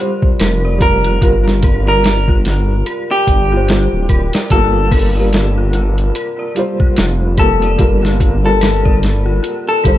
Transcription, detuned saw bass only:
0.41 F1
1.22 G1
3.28 G1
3.93 D1
4.10 D1
4.51 G1
6.98 F1
7.79 G1
9.85 G1

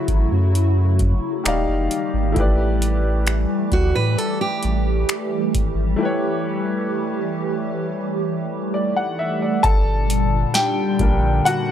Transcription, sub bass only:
0.08 A1
0.32 F#2
1.46 D#1
1.68 F1
2.14 G#1
2.37 A1
3.72 D2
3.96 A2
4.64 A1
5.55 G#1
9.64 G1
11.00 A#1

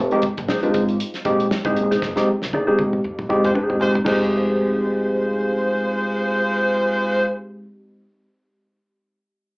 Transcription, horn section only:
3.44 G#3 F4 C5
3.80 G#3 F4 C5
4.06 G#3 F4 C5

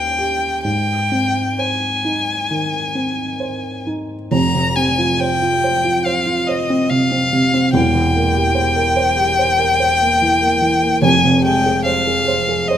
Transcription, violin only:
Already playing: G5
0.64 G5
1.59 G#5
4.33 A#5
4.76 G#5
5.20 G5
6.05 F5
6.47 D#5
6.90 F5
7.74 G5
11.04 G#5
11.44 G5
11.85 F5
12.68 D#5

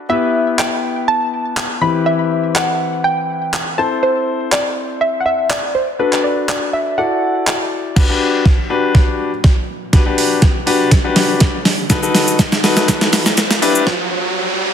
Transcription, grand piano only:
0.09 B3 E4 G4 B4
1.81 E3 C4 E4 G4 B4
3.78 C4 E4 A4 C5
5.99 D4 F#4 A4 B4
6.97 E4 F#4 A4 D5
7.96 D4 F#4 G4 B4
8.09 D4 F#4 G4 B4
8.70 D4 F#4 G4 B4
9.93 D4 F#4 G4 B4
10.06 D4 F#4 G4 B4
10.66 D4 F#4 G4 B4
11.04 D4 F#4 G4 B4
11.90 D#4 F#4 A4 B4
12.02 D#4 F#4 A4 B4
12.63 D#4 F#4 A4 B4
13.62 D4 E4 G4 B4

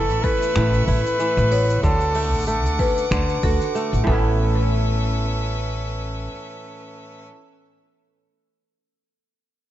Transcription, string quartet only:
Already playing: A3 E5 B5 C#6
1.84 F#5 D6
4.07 C#4 A4 B4 E5

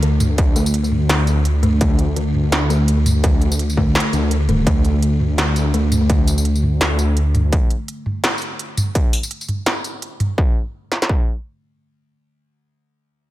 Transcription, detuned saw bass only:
0.02 D2
1.09 D2
1.81 D2
2.88 D2
4.13 D2
4.49 D#1
4.67 D2
5.74 D2
6.81 D2

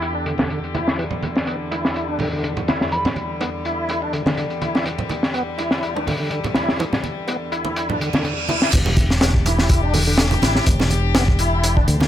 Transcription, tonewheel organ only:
Already playing: E4
0.15 D4
0.26 D3
0.39 D3
0.50 D3
0.75 E4
0.99 E3
1.47 B3
1.71 E4
2.09 D4
2.20 D3
2.33 D3
2.44 D3
2.68 E4
2.92 E3
3.41 B3
3.65 E4
4.02 D4
4.13 D3
4.26 D3
4.37 D3
4.61 E4
4.86 E3
5.34 B3
5.58 E4
5.96 D4
6.07 D3
6.20 D3
6.31 D3
6.55 E4
6.79 E3
7.28 B3
7.52 E4
7.89 D4
8.00 D3
8.13 D3
8.24 D3
8.48 E4
8.73 E3
9.21 B3
9.46 E4
9.83 D4
9.94 D3
10.07 D3
10.19 D3
10.43 E4
10.67 E3
11.15 B3
11.40 E4
11.77 D4
11.88 D3
12.01 D3

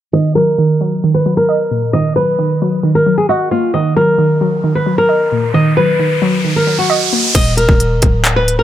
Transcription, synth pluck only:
0.13 D#3
0.35 F#3
0.58 D#3
0.81 F#3
1.04 D#3
1.26 F#3
1.49 D#5
1.71 A#2
1.94 D#3
2.16 F#3
2.39 D#3
2.62 F#3
2.83 D#3
3.06 F#3
3.29 D#5
3.51 A#3
3.74 D#3
3.97 F#3
4.18 D#3
4.41 F#3
4.64 D#3
4.86 F#3
5.09 D#5
5.32 A#2
5.54 D#3
5.77 F#3
6.00 D#3
6.22 F#3
6.45 D#3
6.67 F#3
6.90 D#5
7.13 A#3

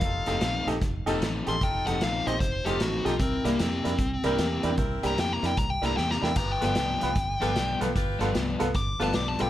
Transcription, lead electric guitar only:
Already playing: F5
1.48 C6
1.63 G5
1.87 F#5
2.04 F5
2.26 D#5
2.40 C5
2.65 G4
2.82 F#4
3.06 F4
3.20 C4
3.46 A#3
3.61 C4
5.07 A#5
5.20 G5
5.33 A#5
5.46 G5
5.58 A#5
5.70 G5
5.86 A#5
5.97 G5
6.11 A#5
6.24 G5
6.37 A#5
6.52 G5
6.65 G5
8.76 D6
9.03 A5
9.15 D6
9.28 A5
9.41 G5

